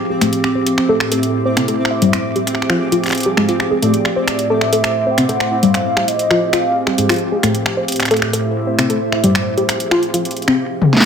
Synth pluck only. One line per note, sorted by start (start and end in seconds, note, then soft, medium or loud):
0.10 0.16 G#4 medium
0.21 0.32 A3 medium
0.55 0.66 C5 medium
0.89 0.99 A4 loud
1.12 1.22 A4 medium
1.45 1.56 C5 medium
1.57 1.67 C4 medium
1.68 1.78 A4 medium
1.91 1.97 E5 medium
2.02 2.13 G3 medium
2.36 2.46 G4 medium
2.70 2.79 F4 loud
2.92 3.03 F4 medium
3.26 3.37 G4 medium
3.37 3.47 G#3 medium
3.49 3.58 F4 medium
3.71 3.77 G#4 medium
3.82 3.93 A3 medium
4.16 4.27 C5 medium
4.50 4.60 A4 loud
4.73 4.83 A4 medium
5.06 5.17 C5 medium
5.18 5.28 C4 medium
5.29 5.39 A4 medium
5.52 5.57 E5 medium
5.63 5.74 G3 medium
5.97 6.07 G4 medium
6.31 6.40 F4 loud
6.53 6.64 F4 medium
6.87 6.98 G4 medium
6.98 7.08 G#3 medium
7.10 7.19 F4 medium
7.32 7.38 G#4 medium
7.43 7.54 A3 medium
7.77 7.88 C5 medium
8.11 8.21 A4 loud
8.33 8.44 A4 medium
8.67 8.78 C5 medium
8.79 8.88 C4 medium
8.90 9.00 A4 medium
9.12 9.18 E5 medium
9.24 9.34 G3 medium
9.57 9.68 G4 medium
9.91 10.01 F4 loud
10.14 10.25 F4 medium
10.48 10.58 C4 medium